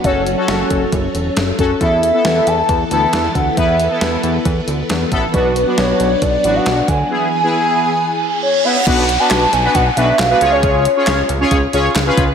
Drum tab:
CC |--------|--------|--------|--------|
HH |xxxxxxxx|xxxxxxxx|xxxxxxxx|xxxxxxxx|
CP |--------|--------|--------|--------|
SD |--o---o-|--o---o-|--o---o-|--o---o-|
BD |o--oo--o|o---o--o|o---o--o|o---o--o|

CC |--------|x-------|--------|
HH |--------|xxxxxxxx|xxxxxxxx|
CP |--------|--x---x-|--x---x-|
SD |--------|--o---o-|--o---o-|
BD |--------|o---o---|o---o--o|